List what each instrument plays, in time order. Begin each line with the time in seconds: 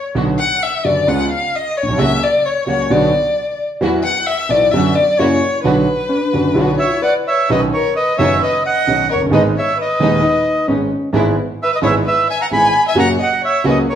0.15 grand piano B1 B2 D3 F#3 B3 F#4, string section B3 D4 F#4
0.39 violin F#5
0.63 violin E5
0.84 grand piano F#1 F#2 D3 F#3 B3 F#4, string section B3 D4 F#4, violin D5
1.07 grand piano C#2 C#3 G#3 B3 F4, string section B3 C#4 F4, violin F#5
1.32 violin F5
1.56 violin D#5
1.77 violin C#5
1.83 grand piano A#1
1.88 grand piano B1
1.93 grand piano C2
1.98 grand piano C#2 C#3 F#3 A#3 F#4, string section C#3 A#3 C#4 F#4, violin E5
2.23 violin D5
2.46 violin C#5
2.66 grand piano C#2 C#3 F#3 A#3 F#4, string section C#3 A#3 C#4 F#4, violin C#5
2.90 grand piano B1 B2 D3 F#3 B3 F#4, string section B3 D4 F#4, violin D5
3.81 grand piano E2 E3 F#3 B3 F#4, string section B3 E4 F#4
4.04 violin F#5
4.27 violin E5
4.49 grand piano B1 B2 E3 F#3 B3 F#4, string section B3 E4 F#4, violin D5
4.71 grand piano F#2 D3 F#3 B3 F#4, string section F#3 B3 D4 F#4, violin E5
4.96 violin D5
5.19 grand piano F#2 C#3 F#3 A#3 E4, string section A#3 E4 F#4, violin C#5
5.64 grand piano B1 B2 D3 F#3 B3 F#4, string section B3 D4 F#4, violin B4
6.09 hollow-body jazz guitar D4
6.33 grand piano F#1 F#2 D3 F#3 B3 F#4, string section B3 D4 F#4
6.55 grand piano B1 B2 D3 F#3 B3 F#4, string section B3 D4 F#4, hollow-body jazz guitar F#4
6.79 violin C#5, bandoneon E5
7.02 hollow-body jazz guitar B4, violin D5, bandoneon F#5
7.28 violin C#5, bandoneon E5
7.49 grand piano B1 B2 D#3 B3 C#4 F#4, string section B3 C#4 D#4, violin B4, bandoneon D#5
7.74 violin A#4, bandoneon C#5
7.96 violin B4, bandoneon D#5
8.18 grand piano F#1 F#2 D#3 B3 C#4 F#4, string section B3 C#4 D#4, violin C#5, bandoneon E5
8.42 violin B4, bandoneon D#5
8.66 violin D#5, bandoneon F#5
8.87 grand piano B1 B2 D#3 B3 C#4 F#4, string section B3 C#4 D#4
9.11 grand piano F1, violin A#4, bandoneon C#5
9.21 grand piano F#1
9.26 grand piano G1
9.30 grand piano G#1 G#2 D#3 G#3 B3 G#4, string section G#3 B3 D#4, violin B4, bandoneon D#5
9.57 violin C#5, bandoneon E5
9.78 violin B4, bandoneon D#5
10.00 grand piano D#1 D#2 D#3 G#3 B3 G#4, string section G#3 B3 D#4
10.23 hollow-body jazz guitar D#4
10.68 grand piano G#1 G#2 D#3 G#3 B3 G#4, string section G#3 B3 D#4, hollow-body jazz guitar C#4
11.13 grand piano G#1 G#2 E3 G#3 B3 G#4, string section G#3 B3 E4, hollow-body jazz guitar B3
11.63 violin B4, bandoneon E5
11.72 violin B4, bandoneon D#5
11.82 grand piano G#1 G#2 E3 G#3 B3 G#4, string section G#3 B3 E4, violin C#5
11.86 bandoneon E5
12.05 violin B4, bandoneon E5
12.29 violin E5, bandoneon G#5
12.42 violin F#5, bandoneon A#5
12.50 grand piano G#1 G#2 E3 G#3 B3 G#4, string section G#3 B3 E4, violin G#5, bandoneon B5
12.88 violin E5, bandoneon G#5
12.95 grand piano F#2 C#3 F#3 A#3 F#4, string section A#3 C#4 F#4, bandoneon A#5
13.00 violin F#5
13.21 violin D#5, bandoneon F#5
13.45 violin C#5, bandoneon E5
13.64 grand piano C#2 C#3 F#3 A#3 F#4, string section A#3 C#4 F#4, violin B4
13.69 bandoneon D#5
13.90 violin A#4, bandoneon C#5